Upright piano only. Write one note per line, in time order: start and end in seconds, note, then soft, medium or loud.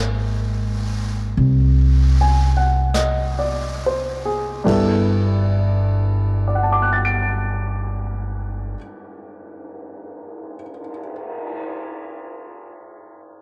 0.00 4.64 G#3 soft
0.00 4.65 A#3 soft
0.00 4.65 C4 soft
0.00 4.66 D#4 soft
0.00 4.66 F#4 soft
0.00 4.68 E5 soft
2.21 2.67 G#5 soft
2.57 3.12 F#5 soft
2.94 3.72 D#5 soft
3.39 4.11 D5 soft
3.86 4.37 C5 soft
4.25 4.87 G#4 soft
4.64 8.75 G2 soft
4.64 8.76 G3 soft
4.64 8.76 B3 soft
4.64 8.77 E4 soft
4.64 8.77 A4 soft
6.48 10.54 D5 soft
6.55 10.62 F#5 soft
6.63 10.70 A5 soft
6.72 10.79 D6 soft
6.82 10.89 F#6 soft
6.93 10.99 A6 soft
7.05 11.12 D7 soft